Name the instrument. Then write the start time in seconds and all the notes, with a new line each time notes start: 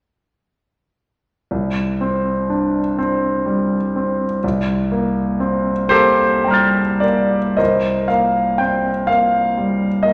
grand piano
1.51 C2
2.01 C4
2.50 D4
2.99 C4
3.46 G3
3.96 C4
4.44 C2
4.92 A#3
5.40 C4
5.89 A#3 G4 A4 C5
6.44 G3 G5 A#5
6.51 F6 A6
7.00 A#3 D5
7.57 C2 A#4 C5 D#5
8.08 A#3 F5
8.58 C4 G5
9.07 A#3 F5
9.57 G3
10.03 A#3 D#5